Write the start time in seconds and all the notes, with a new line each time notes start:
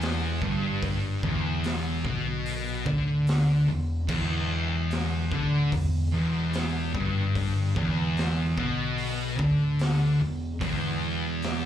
Already playing: E1 E2
0.01 snare, open hi-hat
0.42 G1 G2, kick
0.83 kick, open hi-hat
1.23 E1 E2, kick
1.64 snare, open hi-hat
2.04 B1 B2, kick
2.46 open hi-hat
2.86 D2 D3, kick
3.27 snare, open hi-hat
3.68 E1 E2
4.09 E1 E2, kick, crash
4.91 snare, open hi-hat
5.32 D2 D3, kick
5.72 E1 E2, kick, open hi-hat
6.14 E1 E2
6.53 snare, open hi-hat
6.94 G1 G2, kick
7.35 kick, open hi-hat
7.76 E1 E2, kick
8.17 snare, open hi-hat
8.57 B1 B2, kick
8.98 open hi-hat
9.39 D2 D3, kick
9.79 snare, open hi-hat
10.20 E1 E2
10.61 E1 E2, kick, open hi-hat
11.42 snare, open hi-hat